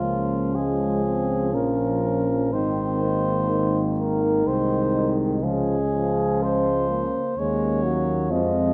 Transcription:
Already playing: tuba C#2, euphonium F3, french horn section C#4, flugelhorn F4
0.04 euphonium A#3
0.55 euphonium G#3, flugelhorn G#4
1.05 euphonium C4
1.53 tuba A#1, euphonium C#4, french horn section C#4, flugelhorn A#4
2.04 euphonium C#4
2.53 tuba G#1, euphonium D#3 C4, french horn section D#4, flugelhorn C5
3.03 euphonium A#3
3.50 euphonium D#3
3.99 flugelhorn A#4
4.44 tuba C2, euphonium G#3, flugelhorn C5
5.43 tuba C#2, euphonium F3 G#3, french horn section C#4, flugelhorn G#4
5.93 euphonium F3
6.40 euphonium G#3, flugelhorn C5
6.89 euphonium A#3
7.37 tuba D#2, euphonium G#3 A#3, french horn section C#4, flugelhorn C#5
7.84 euphonium F#3
8.30 tuba F2, euphonium F3 G#3, french horn section C4, flugelhorn D#5

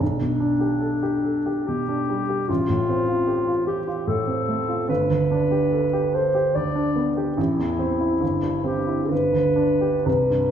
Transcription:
0.00 grand piano B1, clarinet D4
0.21 grand piano B2
0.40 grand piano D4
0.60 grand piano G4
0.80 grand piano A4
1.03 grand piano G4
1.24 grand piano A4
1.46 grand piano G4
1.67 grand piano B2, clarinet G4
1.89 grand piano D4
2.10 grand piano G3
2.29 grand piano G4
2.49 grand piano A1, clarinet F4
2.69 grand piano A2
2.89 grand piano C4
3.08 grand piano F4
3.27 grand piano G4
3.47 grand piano F4
3.67 grand piano G4, clarinet G4
3.87 grand piano F4
4.07 grand piano A2, clarinet A4
4.27 grand piano C4
4.49 grand piano A3
4.68 grand piano F4
4.89 grand piano G1, clarinet B4
5.09 grand piano D2
5.31 grand piano D4
5.51 grand piano G4
5.73 grand piano A4
5.93 grand piano G4
6.14 grand piano A4, clarinet C5
6.35 grand piano G4
6.55 grand piano D2, clarinet D5
6.75 grand piano D4
6.96 grand piano B3
7.17 grand piano G4
7.37 grand piano A1, clarinet E4
7.59 grand piano E2
7.79 grand piano C4
8.01 grand piano E4
8.21 grand piano G1
8.43 grand piano G2
8.64 grand piano C4, clarinet G4
8.87 grand piano E4
9.10 grand piano G1, clarinet B4
9.33 grand piano D2
9.56 grand piano D4
9.81 grand piano G4
10.06 grand piano C2, clarinet B4
10.30 grand piano G2

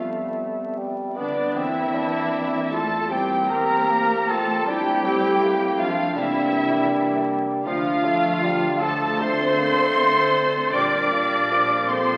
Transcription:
Already playing: double bass section F2, french horn section G3 B3, bassoon A3
0.77 bassoon G3
1.16 cello section D3, bassoon B3, clarinet B3, viola section D4, violin section D5, flute D5
1.56 double bass section E2, cello section E3, french horn section A#3 C4, bassoon C4, clarinet C4, viola section E4, violin section E5, flute E5
1.94 bassoon D4
2.72 cello section A3, clarinet F4, viola section A4, flute A5, violin section A5
3.10 cello section G3, french horn section A#3 C4, bassoon C4, clarinet E4, viola section G4, violin section G5, flute G5
3.50 cello section A#3, clarinet G4, viola section A#4, violin section A#5, flute A#5
3.90 bassoon A#3
4.28 cello section A3, bassoon C4, clarinet F4, viola section A4, violin section A5, flute A5
4.67 double bass section F2, cello section G3, french horn section A3 C4, bassoon D4, clarinet E4, viola section G4, flute G5, violin section G5
5.05 bassoon C4
5.42 bassoon A#3
5.79 cello section F3, bassoon A3, clarinet D4, viola section F4, violin section F5, flute F5
6.16 double bass section C2, cello section E3, bassoon G3, french horn section A#3 D4, clarinet C4, viola section E4, flute E5, violin section E5
7.64 double bass section D2, bassoon F3, cello section F3, french horn section A3 D4, clarinet D4, viola section F4, flute F5, violin section F5
8.04 bassoon A3
8.43 bassoon G3
8.81 bassoon F3, cello section A3, clarinet F4, viola section A4, violin section A5, flute A5
9.19 bassoon A3, cello section C4, clarinet A4, viola section C5, flute C6, violin section C6
9.59 bassoon A#3
9.97 bassoon A3
10.73 double bass section A#1, bassoon G3, french horn section G3 F4, cello section D4, clarinet A#4, viola section D5, violin section D6, flute D6
11.12 bassoon A#3
11.52 bassoon F3
11.89 cello section C4, clarinet A4, viola section C5, flute C6, violin section C6

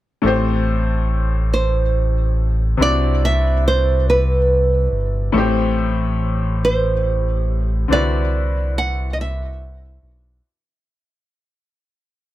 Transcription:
0.22 analog synth bass A1, grand piano A2 A3 C4
0.26 grand piano G4 C5
1.54 nylon-string guitar C5
2.77 analog synth bass C2, grand piano C3 C4 D4 E4
2.82 grand piano F#4 D5, nylon-string guitar D5
3.25 nylon-string guitar E5
3.68 nylon-string guitar C5
4.10 nylon-string guitar B4
4.92 analog synth bass G1
5.32 analog synth bass A1, grand piano A2 A3 C4
5.37 grand piano G4 C5
6.65 nylon-string guitar C5
7.88 analog synth bass C2, grand piano D3 C4 D4 E4
7.93 grand piano F#4 B4, nylon-string guitar D5
8.78 nylon-string guitar F#5
9.13 nylon-string guitar D#5
9.21 nylon-string guitar E5
10.03 analog synth bass B1

